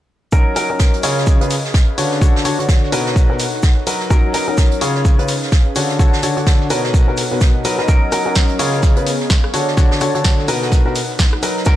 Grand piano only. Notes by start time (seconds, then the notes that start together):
0.33 F#3 C#4 D#4 F#4 A#4
0.56 F#3 C#4 D#4 F#4 A#4
0.70 F#3 C#4 D#4 F#4 A#4
1.03 C#3 C#4 F4 G#4 C#5
1.41 C#3 C#4 F4 G#4 B4
1.98 D3 D4 F#4 A4 C#5
2.21 D3 D4 F#4 A4 C#5
2.45 D3 D4 F#4 A4 C#5
2.59 D3 D4 F#4 A4 C#5
2.92 B2 D#4 F#4 A#4 B4
3.30 B2 D#4 F#4 A#4 B4
3.87 F#3 D#4 F#4 A#4 B4
4.10 F#3 C#4 D#4 F#4 A#4
4.34 F#3 C#4 D#4 F#4 A#4
4.48 F#3 C#4 D#4 F#4 A#4
4.81 C#3 C#4 F4 G#4 C#5
5.19 C#3 C#4 F4 G#4 B4
5.76 D3 D4 F#4 A4 C#5
5.99 D3 D4 F#4 A4 C#5
6.23 D3 D4 F#4 A4 C#5
6.37 D3 D4 F#4 A4 C#5
6.70 B2 D#4 F#4 A#4 B4
7.08 B2 D#4 F#4 A#4 B4
7.31 B2 D#4 F#4 A#4 B4
7.65 F#3 D#4 F#4 A#4 B4
7.79 F#3 D#4 F#4 A#4 B4
7.88 F#3 C#4 D#4 F#4 A#4
8.12 F#3 C#4 D#4 F#4 A#4
8.26 F#3 C#4 D#4 F#4 A#4
8.59 C#3 C#4 F4 G#4 C#5
8.97 C#3 C#4 F4 G#4 B4
9.54 D3 D4 F#4 A4 C#5
9.77 D3 D4 F#4 A4 C#5
10.01 D3 D4 F#4 A4 C#5
10.15 D3 D4 F#4 A4 C#5
10.48 B2 D#4 F#4 A#4 B4
10.86 B2 D#4 F#4 A#4 B4
11.43 F#3 D#4 F#4 A#4 B4
11.66 F#3 C#4 D#4 F#4 A#4